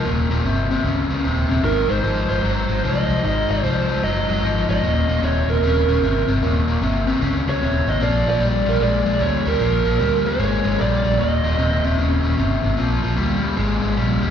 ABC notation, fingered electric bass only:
X:1
M:4/4
L:1/8
Q:"Swing" 1/4=151
K:Ebmix
V:1 name="Fingered electric bass" clef=bass
E,,, E,,, G,,,2 D,, D,, E,,, E,,, | A,,, A,,, A,,, A,,, A,,, A,,, C,, C,, | A,,, A,,, C,,2 _G,,, G,,, A,,, A,,, | E,,, E,,, E,,, E,,, E,,, E,,, G,,, G,,, |
E,,, E,,, G,,,2 D,, D,, E,,, A,,, | B,,, B,,, B,,, B,,, B,,, B,,, =D,, D,, | B,,, B,,, =D,,2 A,,, A,,, B,,, B,,, | E,,, E,,, E,,, E,,, E,,, E,,, G,,, A,,, |
B,,, B,,, =D,,2 A,,, A,,, B,,, D,, |]